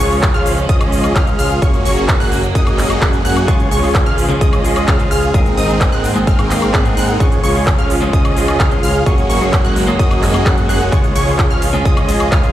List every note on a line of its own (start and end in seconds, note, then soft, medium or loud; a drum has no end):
0.00 0.32 C#2 loud
0.00 1.60 F3 medium
0.00 3.44 G#3 medium
0.00 1.60 C#4 loud
0.00 0.31 F4 medium
0.00 0.31 G#4 medium
0.00 0.31 C#5 medium
0.00 0.31 C#6 medium
0.00 cabasa medium
0.11 open hi-hat medium
0.11 cabasa soft
0.23 kick loud
0.23 clap loud
0.23 closed hi-hat loud
0.23 cabasa soft
0.34 0.67 C#2 loud
0.34 0.51 F4 medium
0.34 0.51 G#4 medium
0.34 0.51 F5 loud
0.34 0.51 F6 loud
0.34 closed hi-hat soft
0.34 cabasa soft
0.46 open hi-hat loud
0.46 cabasa medium
0.57 closed hi-hat soft
0.57 cabasa soft
0.69 1.13 C#2 loud
0.69 1.13 F4 medium
0.69 1.13 G#4 medium
0.69 1.13 D#5 loud
0.69 1.13 D#6 loud
0.69 kick loud
0.69 closed hi-hat loud
0.69 cabasa soft
0.81 closed hi-hat soft
0.81 cabasa soft
0.81 high woodblock medium
0.92 open hi-hat loud
0.92 cabasa medium
1.04 cabasa soft
1.04 high woodblock medium
1.16 1.37 C#2 loud
1.16 1.36 F4 medium
1.16 1.36 G#4 medium
1.16 1.36 F5 medium
1.16 1.36 F6 medium
1.16 kick loud
1.16 clap loud
1.16 closed hi-hat loud
1.16 cabasa soft
1.27 closed hi-hat soft
1.27 cabasa soft
1.39 1.60 C#2 loud
1.39 1.59 F4 medium
1.39 1.59 G#4 medium
1.39 1.59 F5 loud
1.39 1.59 F6 loud
1.39 open hi-hat loud
1.39 cabasa medium
1.50 closed hi-hat soft
1.50 cabasa soft
1.62 1.83 F#1 loud
1.62 3.46 F#3 medium
1.62 1.83 A#3 medium
1.62 3.46 A#3 loud
1.62 1.83 C#4 medium
1.62 1.83 F#4 medium
1.62 1.83 G#4 medium
1.62 1.83 C#5 medium
1.62 1.83 C#6 medium
1.62 kick loud
1.62 closed hi-hat loud
1.62 cabasa soft
1.74 closed hi-hat soft
1.74 cabasa soft
1.85 2.18 F#1 loud
1.85 2.17 A#3 medium
1.85 2.17 C#4 medium
1.85 2.17 F#4 medium
1.85 2.17 G#4 medium
1.85 2.17 C#5 medium
1.85 2.18 C#6 medium
1.85 open hi-hat loud
1.85 cabasa medium
1.97 closed hi-hat soft
1.97 cabasa soft
2.09 kick loud
2.09 clap loud
2.09 closed hi-hat loud
2.09 cabasa soft
2.20 2.53 F#1 loud
2.20 2.37 A#3 medium
2.20 2.37 C#4 medium
2.20 2.37 F#4 medium
2.20 2.37 G#4 medium
2.20 2.37 F#5 loud
2.20 2.37 F#6 loud
2.20 open hi-hat medium
2.20 cabasa soft
2.32 open hi-hat loud
2.32 cabasa medium
2.43 closed hi-hat soft
2.43 cabasa soft
2.55 2.99 F#1 loud
2.55 2.99 A#3 medium
2.55 2.99 C#4 medium
2.55 2.99 F#4 medium
2.55 2.99 G#4 medium
2.55 2.99 D#5 loud
2.55 2.99 D#6 loud
2.55 kick loud
2.55 closed hi-hat loud
2.55 swell medium
2.55 cabasa soft
2.67 closed hi-hat soft
2.67 cabasa soft
2.67 high woodblock medium
2.78 clap medium
2.78 open hi-hat loud
2.78 cabasa medium
2.90 closed hi-hat soft
2.90 cabasa soft
2.90 high woodblock medium
3.02 3.23 F#1 loud
3.02 3.22 A#3 medium
3.02 3.22 F#4 medium
3.02 3.22 G#4 medium
3.02 3.22 F#6 medium
3.02 kick loud
3.02 clap loud
3.02 closed hi-hat medium
3.02 cabasa soft
3.13 closed hi-hat soft
3.13 cabasa soft
3.25 3.46 F#2 loud
3.25 3.45 A#3 medium
3.25 3.45 C#4 medium
3.25 3.45 F#4 medium
3.25 3.45 G#4 medium
3.25 3.45 F#5 medium
3.25 3.45 F#6 loud
3.25 open hi-hat loud
3.25 cabasa medium
3.37 closed hi-hat soft
3.37 cabasa soft
3.37 high woodblock medium
3.48 3.69 C#2 loud
3.48 3.80 C#3 loud
3.48 5.32 F3 medium
3.48 5.32 G#3 medium
3.48 3.80 G#3 medium
3.48 3.80 C#4 medium
3.48 5.32 C#4 medium
3.48 3.69 F4 medium
3.48 3.80 F4 medium
3.48 3.69 G#4 medium
3.48 3.81 G#4 loud
3.48 3.69 C#5 medium
3.48 3.69 C#6 medium
3.48 kick loud
3.48 closed hi-hat loud
3.48 cabasa soft
3.60 closed hi-hat soft
3.60 cabasa soft
3.71 4.04 C#2 loud
3.71 4.04 F4 medium
3.71 4.04 G#4 medium
3.71 4.04 C#5 medium
3.71 4.04 C#6 loud
3.71 open hi-hat loud
3.71 cabasa medium
3.82 3.89 C#3 medium
3.82 3.89 G#3 medium
3.82 3.89 C#4 medium
3.82 3.89 F4 medium
3.82 3.89 G#4 medium
3.82 open hi-hat medium
3.82 cabasa soft
3.95 kick loud
3.95 clap loud
3.95 closed hi-hat loud
3.95 cabasa soft
4.06 4.39 C#2 loud
4.06 4.23 F4 medium
4.06 4.23 G#4 medium
4.06 4.23 F5 medium
4.06 4.23 F6 loud
4.06 closed hi-hat soft
4.06 cabasa soft
4.18 open hi-hat loud
4.18 cabasa medium
4.29 4.61 C#3 medium
4.29 4.62 G#3 medium
4.29 4.62 C#4 medium
4.29 4.62 F4 medium
4.29 4.62 G#4 loud
4.29 closed hi-hat soft
4.29 cabasa soft
4.41 4.85 C#2 loud
4.41 4.85 F4 medium
4.41 4.85 G#4 medium
4.41 4.85 D#5 loud
4.41 4.85 D#6 loud
4.41 kick loud
4.41 closed hi-hat loud
4.41 cabasa soft
4.53 closed hi-hat soft
4.53 cabasa soft
4.53 high woodblock medium
4.64 4.96 C#3 medium
4.64 4.96 G#3 medium
4.64 4.97 C#4 medium
4.64 4.97 F4 medium
4.64 4.97 G#4 loud
4.64 open hi-hat loud
4.64 cabasa medium
4.76 closed hi-hat soft
4.76 cabasa soft
4.76 high woodblock medium
4.88 5.09 C#2 loud
4.88 5.08 G#4 medium
4.88 5.08 F6 medium
4.88 kick loud
4.88 clap loud
4.88 closed hi-hat loud
4.88 cabasa soft
4.99 5.31 C#3 medium
4.99 5.31 G#3 medium
4.99 5.31 C#4 medium
4.99 5.32 F4 medium
4.99 5.32 G#4 loud
4.99 closed hi-hat soft
4.99 cabasa soft
5.11 5.32 C#2 loud
5.11 5.31 F4 medium
5.11 5.31 G#4 medium
5.11 5.32 F5 medium
5.11 5.31 F6 loud
5.11 open hi-hat loud
5.11 cabasa medium
5.23 closed hi-hat soft
5.23 cabasa soft
5.34 5.55 G#1 loud
5.34 5.66 G#2 loud
5.34 12.52 G#3 medium
5.34 7.18 A#3 medium
5.34 5.66 A#3 medium
5.34 5.66 C4 medium
5.34 7.18 C4 medium
5.34 5.55 C4 medium
5.34 5.55 D#4 medium
5.34 5.67 D#4 medium
5.34 5.55 G#4 medium
5.34 5.67 G#4 loud
5.34 5.55 A#4 medium
5.34 5.55 D#5 medium
5.34 5.55 D#6 medium
5.34 kick loud
5.34 closed hi-hat loud
5.34 cabasa soft
5.46 closed hi-hat soft
5.46 cabasa soft
5.57 5.90 G#1 loud
5.57 5.90 C4 medium
5.57 5.90 D#4 medium
5.57 5.90 G#4 medium
5.57 5.90 A#4 medium
5.57 5.90 D#5 medium
5.57 5.90 D#6 loud
5.57 open hi-hat loud
5.57 cabasa medium
5.68 5.75 G#2 medium
5.68 5.75 A#3 medium
5.68 5.75 C4 medium
5.68 5.75 D#4 medium
5.68 5.75 G#4 medium
5.68 closed hi-hat soft
5.68 cabasa soft
5.81 kick loud
5.81 clap loud
5.81 closed hi-hat loud
5.81 cabasa soft
5.92 6.25 G#1 loud
5.92 6.09 C4 medium
5.92 6.09 D#4 medium
5.92 6.09 G#4 medium
5.92 6.09 A#4 medium
5.92 6.09 F#5 loud
5.92 6.09 F#6 loud
5.92 closed hi-hat soft
5.92 cabasa soft
6.04 open hi-hat loud
6.04 cabasa medium
6.15 6.47 G#2 loud
6.15 6.48 A#3 medium
6.15 6.48 C4 medium
6.15 6.48 D#4 medium
6.15 6.48 G#4 loud
6.15 closed hi-hat soft
6.15 cabasa soft
6.27 6.71 G#1 loud
6.27 6.71 C4 medium
6.27 6.71 D#4 medium
6.27 6.71 G#4 medium
6.27 6.71 A#4 medium
6.27 6.71 F5 loud
6.27 6.71 F6 loud
6.27 kick loud
6.27 closed hi-hat loud
6.27 cabasa soft
6.39 closed hi-hat soft
6.39 cabasa soft
6.39 high woodblock medium
6.50 6.82 G#2 medium
6.50 6.83 A#3 medium
6.50 6.83 C4 medium
6.50 6.83 D#4 medium
6.50 6.83 G#4 loud
6.50 clap medium
6.50 open hi-hat loud
6.50 cabasa medium
6.62 closed hi-hat soft
6.62 cabasa soft
6.62 high woodblock medium
6.74 6.95 G#2 loud
6.74 6.94 C4 medium
6.74 6.94 D#4 medium
6.74 6.94 G#4 medium
6.74 6.94 F#5 medium
6.74 6.94 F#6 medium
6.74 kick loud
6.74 clap loud
6.74 closed hi-hat medium
6.74 cabasa soft
6.85 7.17 G#2 medium
6.85 7.17 A#3 medium
6.85 7.17 C4 medium
6.85 7.18 D#4 medium
6.85 7.18 G#4 loud
6.85 closed hi-hat soft
6.85 cabasa soft
6.97 7.18 G#2 loud
6.97 7.18 C4 medium
6.97 7.17 D#4 medium
6.97 7.17 G#4 medium
6.97 7.17 A#4 medium
6.97 7.17 F#5 medium
6.97 7.18 F#6 loud
6.97 open hi-hat loud
6.97 cabasa medium
7.09 closed hi-hat soft
7.09 cabasa soft
7.20 7.41 C#2 loud
7.20 7.52 C#3 loud
7.20 9.05 F3 medium
7.20 7.52 G#3 medium
7.20 7.52 C#4 loud
7.20 9.05 C#4 loud
7.20 7.41 F4 medium
7.20 7.53 F4 medium
7.20 7.41 G#4 medium
7.20 7.53 G#4 loud
7.20 7.41 C#5 medium
7.20 7.41 C#6 medium
7.20 kick loud
7.20 closed hi-hat medium
7.20 cabasa soft
7.32 closed hi-hat soft
7.32 cabasa soft
7.43 7.76 C#2 loud
7.43 7.76 F4 medium
7.43 7.76 G#4 medium
7.43 7.76 C#5 medium
7.43 7.76 C#6 loud
7.43 open hi-hat loud
7.43 cabasa medium
7.54 7.61 C#3 medium
7.54 7.61 G#3 medium
7.54 7.61 C#4 medium
7.54 7.61 F4 medium
7.54 7.61 G#4 medium
7.54 open hi-hat medium
7.54 cabasa soft
7.67 kick loud
7.67 clap loud
7.67 closed hi-hat medium
7.67 cabasa soft
7.78 8.11 C#2 loud
7.78 7.95 F4 medium
7.78 7.95 G#4 medium
7.78 7.95 F5 loud
7.78 7.95 F6 loud
7.78 closed hi-hat soft
7.78 cabasa soft
7.90 open hi-hat loud
7.90 cabasa medium
8.01 8.34 C#3 loud
8.01 8.34 G#3 medium
8.01 8.34 C#4 loud
8.01 8.34 F4 medium
8.01 8.34 G#4 loud
8.01 closed hi-hat soft
8.01 cabasa soft
8.13 8.58 C#2 loud
8.13 8.57 F4 medium
8.13 8.57 G#4 medium
8.13 8.57 D#5 loud
8.13 8.57 D#6 loud
8.13 kick loud
8.13 closed hi-hat medium
8.13 cabasa soft
8.25 closed hi-hat soft
8.25 cabasa soft
8.25 high woodblock medium
8.36 8.68 C#3 loud
8.36 8.69 G#3 medium
8.36 8.69 C#4 medium
8.36 8.69 F4 medium
8.36 8.69 G#4 loud
8.36 open hi-hat loud
8.36 cabasa medium
8.48 closed hi-hat soft
8.48 cabasa soft
8.48 high woodblock medium
8.60 8.81 C#2 loud
8.60 8.80 F4 medium
8.60 8.80 G#4 medium
8.60 8.80 F5 medium
8.60 8.80 F6 medium
8.60 kick loud
8.60 clap loud
8.60 closed hi-hat medium
8.60 cabasa soft
8.71 9.03 C#3 loud
8.71 9.03 G#3 medium
8.71 9.04 C#4 medium
8.71 9.04 F4 medium
8.71 9.04 G#4 loud
8.71 closed hi-hat soft
8.71 cabasa soft
8.83 9.04 C#2 loud
8.83 9.04 F4 medium
8.83 9.04 G#4 medium
8.83 9.04 F5 medium
8.83 9.04 F6 loud
8.83 open hi-hat loud
8.83 cabasa medium
8.96 cabasa soft
9.06 9.27 F#1 loud
9.06 10.91 F#3 medium
9.06 9.38 A#3 loud
9.06 9.27 A#3 medium
9.06 10.91 A#3 loud
9.06 9.38 C#4 medium
9.06 9.27 C#4 medium
9.06 9.27 F#4 medium
9.06 9.39 F#4 medium
9.06 9.27 G#4 medium
9.06 9.39 G#4 loud
9.06 9.27 C#5 medium
9.06 9.27 C#6 medium
9.06 kick loud
9.06 closed hi-hat medium
9.06 cabasa soft
9.18 closed hi-hat soft
9.18 cabasa soft
9.30 9.62 F#1 loud
9.30 9.62 A#3 medium
9.30 9.62 C#4 medium
9.30 9.62 F#4 medium
9.30 9.62 G#4 medium
9.30 9.62 C#5 medium
9.30 9.62 C#6 medium
9.30 open hi-hat loud
9.30 cabasa medium
9.41 9.47 A#3 medium
9.41 9.47 C#4 medium
9.41 9.47 F#4 medium
9.41 9.47 G#4 medium
9.41 closed hi-hat soft
9.41 cabasa soft
9.53 kick loud
9.53 clap loud
9.53 closed hi-hat medium
9.53 cabasa soft
9.64 9.97 F#1 loud
9.64 9.81 A#3 medium
9.64 9.81 C#4 medium
9.64 9.81 F#4 medium
9.64 9.81 G#4 medium
9.64 9.81 F#5 loud
9.64 9.81 F#6 loud
9.64 closed hi-hat soft
9.64 cabasa soft
9.76 open hi-hat loud
9.76 cabasa medium
9.87 10.20 A#3 medium
9.87 10.20 C#4 medium
9.87 10.20 F#4 medium
9.87 10.20 G#4 loud
9.87 closed hi-hat soft
9.87 cabasa soft
9.99 10.44 F#1 loud
9.99 10.43 A#3 medium
9.99 10.43 C#4 medium
9.99 10.43 F#4 medium
9.99 10.43 G#4 medium
9.99 10.43 D#5 loud
9.99 10.43 D#6 loud
9.99 kick loud
9.99 closed hi-hat medium
9.99 cabasa soft
10.11 closed hi-hat soft
10.11 cabasa soft
10.11 high woodblock medium
10.23 clap medium
10.23 open hi-hat loud
10.23 cabasa medium
10.34 10.66 A#3 medium
10.34 10.66 C#4 medium
10.34 10.66 F#4 medium
10.34 10.67 G#4 medium
10.34 closed hi-hat soft
10.34 cabasa soft
10.34 high woodblock medium
10.46 10.67 F#2 medium
10.46 10.66 A#3 medium
10.46 10.66 C#4 medium
10.46 10.66 F#4 medium
10.46 10.66 G#4 medium
10.46 10.66 F#5 medium
10.46 10.66 F#6 medium
10.46 kick loud
10.46 clap loud
10.46 closed hi-hat medium
10.46 cabasa soft
10.58 closed hi-hat soft
10.58 cabasa soft
10.69 10.90 F#1 loud
10.69 10.78 A#3 medium
10.69 10.90 A#3 medium
10.69 10.78 C#4 medium
10.69 10.90 C#4 medium
10.69 10.90 F#4 medium
10.69 10.79 F#4 medium
10.69 10.90 G#4 medium
10.69 10.79 G#4 medium
10.69 10.90 F#5 medium
10.69 10.90 F#6 loud
10.69 open hi-hat loud
10.69 cabasa medium
10.81 closed hi-hat soft
10.81 cabasa soft
10.92 11.13 C#2 loud
10.92 11.24 C#3 loud
10.92 12.52 F3 medium
10.92 11.24 G#3 medium
10.92 11.24 C#4 medium
10.92 12.52 C#4 medium
10.92 11.13 F4 medium
10.92 11.25 F4 medium
10.92 11.13 G#4 medium
10.92 11.25 G#4 loud
10.92 11.13 C#5 medium
10.92 11.13 C#6 medium
10.92 kick loud
10.92 closed hi-hat medium
10.92 cabasa soft
11.04 closed hi-hat soft
11.04 cabasa soft
11.16 11.48 C#2 loud
11.16 11.48 F4 medium
11.16 11.48 G#4 medium
11.16 11.48 C#5 medium
11.16 11.48 C#6 medium
11.16 open hi-hat loud
11.16 ride medium
11.16 cabasa medium
11.26 11.33 C#3 medium
11.26 11.33 G#3 medium
11.26 11.33 C#4 medium
11.26 11.33 F4 medium
11.26 11.33 G#4 medium
11.26 open hi-hat medium
11.26 cabasa soft
11.39 kick loud
11.39 clap loud
11.39 closed hi-hat medium
11.39 cabasa soft
11.50 11.83 C#2 loud
11.50 11.67 F4 medium
11.50 11.67 G#4 medium
11.50 11.67 F5 loud
11.50 11.67 F6 loud
11.50 closed hi-hat soft
11.50 cabasa soft
11.62 open hi-hat loud
11.62 ride medium
11.62 cabasa medium
11.73 12.06 C#3 loud
11.73 12.06 G#3 medium
11.73 12.06 C#4 medium
11.73 12.06 F4 medium
11.73 12.06 G#4 loud
11.73 closed hi-hat soft
11.73 cabasa soft
11.85 12.30 C#2 loud
11.85 12.29 F4 medium
11.85 12.29 G#4 medium
11.85 12.29 D#5 loud
11.85 12.29 D#6 loud
11.85 kick loud
11.85 closed hi-hat medium
11.85 cabasa soft
11.97 closed hi-hat soft
11.97 cabasa soft
11.97 high woodblock medium
12.08 12.40 C#3 medium
12.08 12.41 G#3 medium
12.08 12.41 C#4 medium
12.08 12.41 F4 medium
12.08 12.41 G#4 loud
12.08 open hi-hat loud
12.08 ride medium
12.08 cabasa medium
12.20 closed hi-hat soft
12.20 cabasa soft
12.20 high woodblock medium
12.32 12.52 C#2 loud
12.32 12.52 F4 medium
12.32 12.52 G#4 medium
12.32 12.52 F5 medium
12.32 12.52 F6 medium
12.32 kick loud
12.32 clap loud
12.32 closed hi-hat medium
12.32 cabasa soft
12.43 12.52 C#3 medium
12.43 12.52 G#3 medium
12.43 12.52 C#4 medium
12.43 12.52 F4 medium
12.43 12.52 G#4 loud
12.43 closed hi-hat soft
12.43 cabasa soft